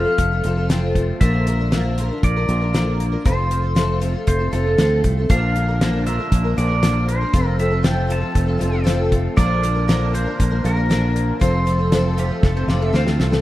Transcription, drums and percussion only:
0.18 kick, closed hi-hat
0.44 closed hi-hat
0.70 snare, closed hi-hat
0.95 kick, closed hi-hat
1.21 kick, closed hi-hat
1.47 closed hi-hat
1.72 snare, closed hi-hat
1.98 closed hi-hat
2.23 kick, closed hi-hat
2.49 closed hi-hat
2.74 snare, closed hi-hat
3.00 closed hi-hat
3.25 kick, closed hi-hat
3.51 closed hi-hat
3.76 snare, closed hi-hat
4.02 closed hi-hat
4.27 kick, closed hi-hat
4.53 closed hi-hat
4.78 snare, closed hi-hat
5.04 kick, closed hi-hat
5.30 kick, closed hi-hat
5.56 closed hi-hat
5.81 snare, closed hi-hat
6.06 closed hi-hat
6.32 kick, closed hi-hat
6.58 closed hi-hat
6.83 snare, closed hi-hat
7.09 closed hi-hat
7.33 kick, closed hi-hat
7.59 closed hi-hat
7.84 snare, closed hi-hat
8.10 closed hi-hat
8.35 kick, closed hi-hat
8.61 closed hi-hat
8.87 snare, closed hi-hat
9.12 kick, closed hi-hat
9.37 kick, closed hi-hat
9.63 closed hi-hat
9.89 snare, closed hi-hat
10.15 closed hi-hat
10.40 kick, closed hi-hat
10.65 closed hi-hat
10.91 snare, closed hi-hat
11.16 closed hi-hat
11.41 kick, closed hi-hat
11.67 closed hi-hat
11.92 snare, closed hi-hat
12.18 closed hi-hat
12.43 kick, snare
12.69 snare
12.94 snare
13.07 snare
13.20 snare
13.32 snare

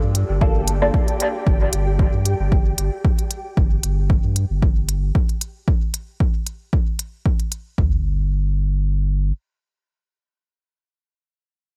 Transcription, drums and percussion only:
0.15 closed hi-hat
0.41 kick
0.68 closed hi-hat
0.94 kick
1.08 closed hi-hat
1.20 closed hi-hat
1.47 kick
1.73 closed hi-hat
1.99 kick
2.25 closed hi-hat
2.52 kick
2.78 closed hi-hat
3.05 kick
3.19 closed hi-hat
3.31 closed hi-hat
3.57 kick
3.83 closed hi-hat
4.10 kick
4.36 closed hi-hat
4.62 kick
4.89 closed hi-hat
5.15 kick
5.29 closed hi-hat
5.41 closed hi-hat
5.68 kick
5.94 closed hi-hat
6.20 kick
6.47 closed hi-hat
6.73 kick
6.99 closed hi-hat
7.26 kick
7.40 closed hi-hat
7.52 closed hi-hat
7.78 kick, floor tom

